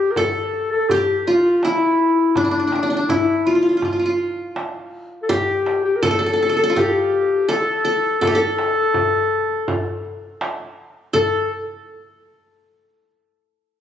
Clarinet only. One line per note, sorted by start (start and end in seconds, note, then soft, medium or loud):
0.00 0.13 G4 medium
0.11 0.20 A#4 medium
0.18 0.72 A4 medium
0.72 0.91 A4 medium
0.89 1.19 G4 medium
1.19 1.28 G4 soft
1.27 1.57 F4 medium
1.57 1.66 F4 medium
1.64 2.38 E4 medium
2.37 2.45 D4 medium
2.44 2.52 E4 medium
2.50 2.91 D4 medium
2.91 3.11 D4 medium
3.09 3.48 E4 medium
3.47 4.19 F4 medium
5.23 5.31 A4 medium
5.30 5.84 G4 medium
5.84 5.98 G4 medium
5.96 6.04 A#4 medium
6.02 6.57 A4 medium
6.58 6.75 A4 medium
6.77 6.85 G4 medium
6.84 6.91 A4 medium
6.90 7.51 G4 medium
7.49 8.22 A4 medium
8.22 8.35 A4 medium
8.36 10.37 A4 medium
11.15 11.49 A4 medium